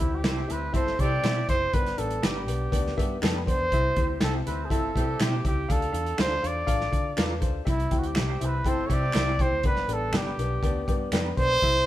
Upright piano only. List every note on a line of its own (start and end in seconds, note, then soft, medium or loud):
0.00 0.46 C3 medium
0.00 0.18 C4 medium
0.00 0.18 E4 medium
0.00 0.18 G4 medium
0.00 0.18 E5 medium
0.24 0.42 C4 medium
0.24 0.42 E4 medium
0.24 0.42 G4 medium
0.24 0.42 E5 medium
0.48 0.67 C4 medium
0.48 0.67 E4 medium
0.48 0.67 G4 medium
0.48 0.67 E5 medium
0.73 0.91 C4 medium
0.73 0.92 E4 medium
0.73 0.91 G4 medium
0.73 0.92 E5 medium
0.98 1.17 C4 medium
0.98 1.17 E4 medium
0.98 1.17 G4 medium
0.98 1.17 A4 medium
1.23 1.41 C4 medium
1.23 1.42 E4 medium
1.23 1.41 G4 medium
1.23 1.41 E5 medium
1.49 1.66 C4 medium
1.49 1.67 E4 medium
1.49 1.66 G4 medium
1.49 1.66 E5 medium
1.73 2.44 G2 medium
1.73 1.92 B3 medium
1.73 1.91 D4 medium
1.73 1.91 G4 medium
1.73 1.91 D5 medium
1.98 2.16 B3 medium
1.98 2.16 D4 medium
1.98 2.16 G4 medium
1.98 2.16 D5 medium
2.22 2.40 B3 medium
2.22 2.40 D4 medium
2.22 2.40 G4 medium
2.22 2.40 D5 medium
2.47 2.66 B3 medium
2.47 2.66 D4 medium
2.47 2.65 G4 medium
2.47 2.66 D5 medium
2.72 2.90 B3 medium
2.72 2.90 D4 medium
2.72 2.90 G4 medium
2.72 2.90 D5 loud
2.97 3.15 B3 medium
2.97 3.15 D4 medium
2.97 3.15 G4 medium
2.97 3.15 E5 medium
3.22 3.40 B3 medium
3.22 3.40 D4 medium
3.22 3.40 G4 medium
3.22 3.40 A4 medium
3.46 3.64 B3 medium
3.46 3.64 D4 medium
3.46 3.64 G4 medium
3.46 3.64 D5 medium
3.73 4.43 C3 medium
3.73 3.90 C4 medium
3.73 3.90 E4 medium
3.73 3.90 G4 medium
3.73 3.90 E5 medium
3.97 4.14 C4 medium
3.97 4.14 E4 medium
3.97 4.14 G4 medium
3.97 4.14 C5 medium
4.21 4.39 C4 medium
4.21 4.39 E4 medium
4.21 4.39 G4 medium
4.21 4.39 E5 medium
4.46 4.64 C4 medium
4.46 4.64 E4 medium
4.46 4.64 G4 medium
4.46 4.64 E5 medium
4.70 4.88 C4 medium
4.70 4.88 E4 medium
4.70 4.88 G4 medium
4.70 4.88 E5 loud
4.95 5.13 C4 medium
4.95 5.13 E4 medium
4.95 5.13 G4 medium
4.95 5.13 E5 medium
5.20 5.38 C4 medium
5.20 5.38 E4 medium
5.20 5.38 G4 medium
5.20 5.38 E5 medium
5.45 5.63 C4 medium
5.45 5.62 E4 medium
5.45 5.62 G4 medium
5.45 5.63 E5 medium
5.68 6.39 D3 medium
5.68 5.87 D4 medium
5.68 5.86 F4 medium
5.68 5.87 A4 medium
5.68 5.87 F5 medium
5.92 6.11 D4 medium
5.92 6.11 F4 medium
5.92 6.11 A4 medium
5.92 6.11 F5 medium
6.18 6.36 D4 medium
6.18 6.36 F4 medium
6.18 6.36 A4 medium
6.18 6.36 F5 medium
6.42 6.60 D4 medium
6.42 6.60 F4 medium
6.42 6.60 A4 medium
6.42 6.61 F5 medium
6.67 6.85 D4 medium
6.67 6.85 F4 medium
6.67 6.85 A4 medium
6.67 6.85 F5 loud
6.91 7.10 D4 medium
6.91 7.10 F4 medium
6.91 7.10 A4 medium
6.91 7.10 F5 medium
7.17 7.35 D4 medium
7.17 7.35 F4 medium
7.17 7.35 A4 medium
7.17 7.35 B4 medium
7.40 7.59 D4 medium
7.40 7.59 F4 medium
7.40 7.59 A4 medium
7.40 7.59 C5 medium
7.65 8.36 C3 medium
7.65 7.84 C4 medium
7.65 7.84 E4 medium
7.65 7.84 G4 medium
7.65 7.84 E5 medium
7.91 8.09 C4 medium
7.91 8.09 E4 medium
7.91 8.09 G4 medium
7.91 8.09 G5 medium
8.16 8.34 C4 medium
8.16 8.34 E4 medium
8.16 8.34 G4 medium
8.16 8.34 E5 medium
8.40 8.59 C4 medium
8.40 8.59 E4 medium
8.40 8.58 G4 medium
8.40 8.59 E5 medium
8.66 8.84 C4 medium
8.66 8.84 E4 medium
8.66 8.83 G4 medium
8.66 8.84 G5 medium
8.90 9.09 C4 medium
8.90 9.08 E4 medium
8.90 9.08 G4 medium
8.90 9.09 E5 medium
9.16 9.34 C4 medium
9.16 9.34 E4 medium
9.16 9.34 G4 medium
9.16 9.34 E5 medium
9.40 9.58 C4 medium
9.40 9.58 E4 medium
9.40 9.58 G4 medium
9.40 9.58 G5 medium
9.65 10.35 G2 medium
9.65 9.83 B3 medium
9.65 9.83 D4 medium
9.65 9.83 G4 medium
9.65 9.83 D5 medium
9.88 10.07 B3 medium
9.88 10.07 D4 medium
9.88 10.07 G4 medium
9.88 10.07 D5 medium
10.13 10.32 B3 medium
10.13 10.32 D4 medium
10.13 10.32 G4 medium
10.13 10.32 D5 medium
10.39 10.57 B3 medium
10.39 10.57 D4 medium
10.39 10.57 G4 medium
10.39 10.57 D5 medium
10.63 10.81 B3 medium
10.63 10.81 D4 medium
10.63 10.81 G4 medium
10.63 10.81 D5 loud
10.88 11.06 B3 medium
10.88 11.06 D4 medium
10.88 11.06 G4 medium
10.88 11.06 D5 medium
11.12 11.30 B3 medium
11.12 11.31 D4 medium
11.12 11.31 G4 medium
11.12 11.30 D5 medium
11.37 11.55 B3 medium
11.37 11.55 D4 medium
11.37 11.55 G4 medium
11.37 11.55 D5 medium
11.63 11.86 C3 medium
11.63 11.81 C4 medium
11.63 11.81 E4 medium
11.63 11.81 G4 medium
11.63 11.81 E5 loud